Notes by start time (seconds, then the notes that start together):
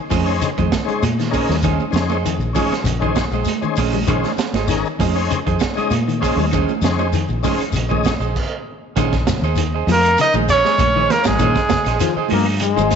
0.10 F2 F3 C#4 G#4 C5 D#5, kick, open hi-hat, high conga, low conga, shekere
0.25 C#4 D#4 G#4 C5, claves, shekere
0.41 C#3, closed hi-hat, shekere
0.58 F2 D#3 G#4 C5 D#5, kick, closed hi-hat, high conga, shekere
0.72 kick, snare, closed hi-hat, high conga, claves, shekere
0.85 G#3 C#4 D#4 G#4 C5, muted fingered electric bass stroke, closed hi-hat, shekere
0.90 G#4
1.03 A#2, closed hi-hat, high conga, claves, shekere
1.19 D#3, snare, closed hi-hat, shekere
1.30 C#4 D#4 G#4 A#4, kick, shekere
1.34 C5 D#5, open hi-hat
1.49 D#2 G3, snare, high conga, low conga, shekere
1.62 D#3 C#4 G#4 C5 D#5, kick, closed hi-hat, low conga, claves, shekere
1.80 high conga, shekere
1.91 F2 C#4 D#4 G#4 C5, shekere
1.95 C#3, snare, closed hi-hat
2.10 G#4 C5 D#5, high conga, claves, shekere
2.25 D#3, closed hi-hat, shekere
2.38 A#1, shekere
2.53 F3 C#4 D#4 G#4 C5 C#5 D#5, kick, open hi-hat, high conga, low conga, shekere
2.70 muted fingered electric bass stroke, snare, closed hi-hat, claves, shekere
2.84 A#1 C#3, closed hi-hat, shekere
3.00 D#3 C#4 D#4 G#4 C5 D#5, kick, shekere
3.04 G#4
3.15 kick, snare, closed hi-hat, high conga, claves, shekere
3.31 A#1 G#3 G#4 C5 D#5, shekere
3.45 closed hi-hat, high conga, claves, shekere
3.61 D#3 C#4 D#4 G#4 C5, muted fingered electric bass stroke, shekere
3.76 A#1 C#4 G#4 C5 D#5, kick, open hi-hat, high conga, shekere
3.93 G3, high conga, low conga, shekere
4.06 A#1 D#3 C#4 D#4 G#4 C5 D#5, kick, closed hi-hat, low conga, claves, shekere
4.23 snare, closed hi-hat, high conga, shekere
4.37 muted fingered electric bass stroke, muted clean electric guitar stroke, snare, closed hi-hat, shekere
4.53 G#1 G#4 C5 D#5, snare, closed hi-hat, high conga, claves, shekere
4.68 D#3 C#4 D#4 G#4 A#4, snare, closed hi-hat, shekere
4.85 shekere
4.99 F2 F3 C#4 G#4 C5 D#5, kick, open hi-hat, high conga, low conga, shekere
5.15 C#4 D#4 G#4 C5, claves, shekere
5.31 C#3, closed hi-hat, shekere
5.46 F2 D#3 G#4 C5 D#5, kick, closed hi-hat, shekere
5.60 kick, snare, closed hi-hat, high conga, claves, shekere
5.75 G#3 C#4 D#4 G#4 C5 D#5, muted fingered electric bass stroke, closed hi-hat, shekere
5.91 A#2, closed hi-hat, high conga, claves, shekere
6.08 D#3, closed hi-hat, shekere
6.20 C#4 D#4 G#4 C5 D#5, kick, open hi-hat, shekere
6.36 D#2 G3, high conga, low conga, shekere
6.51 D#3 C#4 G#4 C5 D#5, kick, closed hi-hat, low conga, claves, shekere
6.68 high conga, shekere
6.82 F2 C#3 C#4 D#4 G#4 C5, snare, closed hi-hat, shekere
6.99 G#4 C5 D#5, high conga, claves, shekere
7.13 D#3, closed hi-hat, shekere
7.28 A#1, shekere
7.43 F3 C#4 D#4 G#4 C5 D#5, kick, open hi-hat, high conga, low conga, shekere
7.58 muted fingered electric bass stroke, closed hi-hat, claves, shekere
7.72 A#1 C#3, closed hi-hat, shekere
7.88 D#3 C#4 D#4 G#4 C5 D#5, kick, high conga, shekere
8.04 kick, snare, closed hi-hat, high conga, claves, shekere
8.20 A#1 G#4 C5 D#5, shekere
8.36 kick, crash
8.96 A#1 D#3 C#4 G#4 C5 D#5, kick, closed hi-hat, low conga, claves, shekere
9.12 kick, snare, shekere
9.27 C#3, kick, snare, closed hi-hat, high conga, shekere
9.42 D#2 G#4 C5 D#5, claves, shekere
9.56 D#3, closed hi-hat, shekere
9.74 G#4 C5 D#5
9.87 F2 F3, snare, open hi-hat, high conga, shekere
9.92 A#3 A#4
10.04 closed hi-hat, claves
10.17 C#3 D#5, closed hi-hat, shekere
10.23 D#4
10.33 A#1 D#3 G#4 C5 D#5, high conga, shekere
10.48 C#4 C#5, snare, closed hi-hat, claves, shekere
10.65 G#3 G#4 C5 D#5, snare
10.78 A#1, kick, closed hi-hat, high conga, claves, shekere
10.96 D#3 G#4 C5 D#5
11.10 A#3 A#4, snare, closed hi-hat, high conga, low conga, shekere
11.24 G#1 G3 G#3 G#4, kick, snare, high conga, shekere
11.39 A#2 D#3 C#4 G#4 C5 D#5, kick, closed hi-hat, low conga, claves, shekere
11.55 kick, snare, shekere
11.69 C#3, muted fingered electric bass stroke, kick, snare, closed hi-hat, high conga, shekere
11.85 A#1 G#4 C5 D#5, snare, closed hi-hat, claves, shekere
12.00 D#3 F3, snare, closed hi-hat, shekere
12.16 G#4 C5 D#5, muted fingered electric bass stroke
12.29 G2 F3, open hi-hat, high conga, shekere
12.33 A#3
12.46 claves
12.60 G#3, muted clean electric guitar stroke, closed hi-hat, shekere
12.76 G#1 D#3 G#4 C5 D#5, shekere
12.91 snare, closed hi-hat, claves, shekere